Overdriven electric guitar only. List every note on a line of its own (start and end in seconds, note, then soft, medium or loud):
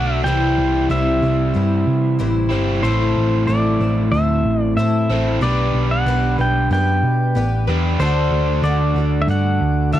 0.00 0.24 D3 medium
0.00 0.24 A3 medium
0.00 0.24 D4 medium
0.00 0.23 F#4 medium
0.24 2.49 C3 medium
0.24 2.49 E3 medium
0.24 2.50 G3 medium
0.24 2.49 C4 medium
0.24 2.48 E4 medium
2.49 2.82 C3 medium
2.49 2.82 E3 medium
2.49 2.82 G3 medium
2.49 2.82 C4 medium
2.49 2.81 E4 medium
2.82 5.07 A2 medium
2.82 5.07 A3 medium
2.82 5.08 C4 loud
2.82 5.08 E4 medium
2.82 5.08 A4 medium
5.10 5.42 A2 medium
5.10 5.41 A3 medium
5.10 5.41 C4 medium
5.10 5.41 E4 medium
5.10 5.40 A4 medium
5.42 7.66 B3 medium
5.42 7.67 D4 medium
5.42 7.67 G4 medium
5.42 7.66 B4 medium
7.68 7.99 B3 medium
7.68 8.00 D4 medium
7.68 7.99 G4 medium
7.68 7.98 B4 medium
7.99 10.00 D3 medium
7.99 10.00 D4 medium
7.99 10.00 F#4 loud
7.99 10.00 A4 loud